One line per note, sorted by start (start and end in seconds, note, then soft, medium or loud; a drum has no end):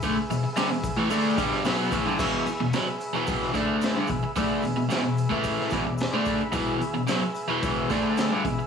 0.00 0.16 D3 medium
0.00 0.50 G#4 medium
0.00 0.49 B4 medium
0.00 0.50 E5 medium
0.00 kick loud
0.00 open hi-hat medium
0.00 shaker loud
0.04 0.17 A3 medium
0.17 muted overdriven electric guitar stroke medium
0.30 0.43 E2 medium
0.30 0.44 B2 medium
0.30 open hi-hat medium
0.30 shaker medium
0.44 muted overdriven electric guitar stroke medium
0.53 0.70 G2 medium
0.53 1.04 G#4 medium
0.53 1.04 B4 medium
0.53 1.04 E5 loud
0.53 open hi-hat medium
0.53 shaker loud
0.57 0.70 D3 loud
0.57 snare loud
0.70 0.92 E2 medium
0.70 0.93 B2 medium
0.83 kick medium
0.83 open hi-hat medium
0.83 shaker medium
0.97 1.10 A2 medium
0.97 1.10 E3 medium
1.10 1.37 D3 loud
1.10 1.37 A3 loud
1.10 1.38 D4 loud
1.10 1.60 G#4 medium
1.10 1.60 B4 medium
1.10 1.60 E5 medium
1.10 open hi-hat medium
1.10 shaker loud
1.37 1.64 G2 medium
1.37 1.64 D3 loud
1.37 1.65 G3 loud
1.37 kick medium
1.37 open hi-hat medium
1.37 shaker medium
1.53 snare soft
1.63 1.91 B2 medium
1.63 1.92 F#3 loud
1.63 1.92 B3 loud
1.63 2.13 G#4 medium
1.63 2.14 B4 medium
1.63 2.14 E5 medium
1.63 snare loud
1.63 open hi-hat medium
1.63 shaker medium
1.91 2.05 A2 loud
1.91 2.06 E3 loud
1.91 kick medium
1.91 open hi-hat medium
1.91 shaker medium
2.06 2.19 G2 medium
2.06 2.19 D3 loud
2.17 2.46 E2 medium
2.17 2.46 B2 medium
2.17 2.67 G#4 loud
2.17 2.67 B4 medium
2.17 2.68 E5 loud
2.17 kick loud
2.17 crash loud
2.17 shaker medium
2.21 2.47 E3 medium
2.33 shaker soft
2.46 muted overdriven electric guitar stroke medium
2.46 open hi-hat medium
2.46 shaker medium
2.60 2.74 E2 medium
2.60 2.73 B2 medium
2.73 2.86 B2 medium
2.73 2.87 F#3 medium
2.73 3.23 G#4 medium
2.73 3.23 B4 medium
2.73 3.23 E5 medium
2.73 snare loud
2.73 open hi-hat medium
2.73 shaker medium
2.87 muted overdriven electric guitar stroke medium
2.87 shaker soft
3.00 open hi-hat medium
3.00 shaker medium
3.13 3.54 E2 medium
3.13 3.53 B2 medium
3.13 3.54 E3 medium
3.13 shaker soft
3.25 3.76 G#4 medium
3.25 3.76 B4 medium
3.25 3.76 E5 medium
3.25 kick loud
3.25 open hi-hat medium
3.25 shaker medium
3.42 snare soft
3.54 3.94 D3 medium
3.54 3.95 A3 loud
3.54 3.95 D4 loud
3.54 kick medium
3.54 open hi-hat medium
3.54 shaker medium
3.81 4.32 G#4 medium
3.81 4.32 B4 medium
3.81 4.32 E5 loud
3.81 snare loud
3.81 open hi-hat medium
3.81 shaker medium
3.94 4.08 G2 medium
3.94 4.09 D3 medium
3.94 shaker soft
4.07 4.23 E2 medium
4.07 4.23 B2 medium
4.07 kick medium
4.07 open hi-hat medium
4.07 shaker medium
4.22 muted overdriven electric guitar stroke medium
4.22 shaker soft
4.36 4.63 D3 medium
4.36 4.63 A3 medium
4.36 4.64 D4 loud
4.36 4.86 G#4 medium
4.36 4.86 B4 medium
4.36 4.87 E5 loud
4.36 kick loud
4.36 open hi-hat medium
4.36 shaker loud
4.50 shaker soft
4.62 4.76 E2 medium
4.62 4.76 B2 medium
4.62 open hi-hat medium
4.62 shaker medium
4.77 4.88 E2 medium
4.77 4.90 B2 medium
4.88 5.03 E2 medium
4.88 5.03 B2 loud
4.88 5.39 G#4 medium
4.88 5.39 B4 medium
4.88 5.39 E5 medium
4.88 open hi-hat medium
4.88 shaker medium
4.92 snare loud
5.04 5.26 E2 medium
5.04 5.26 B2 medium
5.17 open hi-hat medium
5.17 shaker medium
5.30 5.71 A2 medium
5.30 5.72 E3 medium
5.30 5.72 A3 medium
5.30 kick medium
5.30 shaker soft
5.42 5.93 G#4 medium
5.42 5.93 B4 medium
5.42 5.94 E5 medium
5.42 kick medium
5.42 open hi-hat medium
5.42 shaker loud
5.60 snare soft
5.70 5.84 E2 medium
5.70 5.85 B2 loud
5.70 5.97 D5 medium
5.70 kick medium
5.70 snare soft
5.70 open hi-hat medium
5.70 shaker medium
5.86 6.08 E2 medium
5.86 6.08 B2 medium
5.96 6.48 G#4 medium
5.96 6.48 B4 medium
5.96 6.48 E5 medium
5.96 open hi-hat medium
5.96 shaker medium
6.01 snare loud
6.12 6.40 D3 medium
6.12 6.40 A3 medium
6.12 6.41 D4 loud
6.12 shaker soft
6.25 6.52 B5 medium
6.25 kick medium
6.25 open hi-hat medium
6.25 shaker medium
6.40 muted overdriven electric guitar stroke medium
6.40 shaker soft
6.50 6.79 E2 medium
6.50 6.80 B2 medium
6.50 6.81 E3 medium
6.50 7.02 G#4 loud
6.50 7.02 B4 loud
6.50 7.02 E5 loud
6.50 kick loud
6.50 open hi-hat medium
6.50 shaker loud
6.66 shaker soft
6.81 muted overdriven electric guitar stroke medium
6.81 open hi-hat medium
6.81 shaker medium
6.94 7.08 E2 medium
6.94 7.06 B2 medium
7.07 7.21 B2 medium
7.07 7.22 F#3 loud
7.07 7.58 G#4 medium
7.07 7.58 B4 medium
7.07 7.58 E5 loud
7.07 snare loud
7.07 open hi-hat medium
7.07 shaker medium
7.21 muted overdriven electric guitar stroke medium
7.21 shaker soft
7.35 open hi-hat medium
7.35 shaker medium
7.48 7.89 E2 medium
7.48 7.89 B2 medium
7.48 7.90 E3 medium
7.48 shaker soft
7.62 8.13 G#4 medium
7.62 8.12 B4 medium
7.62 8.12 E5 medium
7.62 kick loud
7.62 open hi-hat medium
7.62 shaker loud
7.89 8.30 D3 medium
7.89 8.31 A3 loud
7.89 8.31 D4 medium
7.89 kick medium
7.89 snare soft
7.89 open hi-hat medium
7.89 shaker medium
8.17 8.67 G#4 medium
8.17 8.67 B4 medium
8.17 8.67 E5 loud
8.17 snare loud
8.17 open hi-hat medium
8.17 shaker medium
8.30 8.44 G2 medium
8.30 8.44 D3 medium
8.30 shaker soft
8.44 8.58 E2 medium
8.44 8.59 B2 medium
8.44 kick medium
8.44 open hi-hat medium
8.44 shaker medium
8.59 muted overdriven electric guitar stroke medium
8.59 shaker soft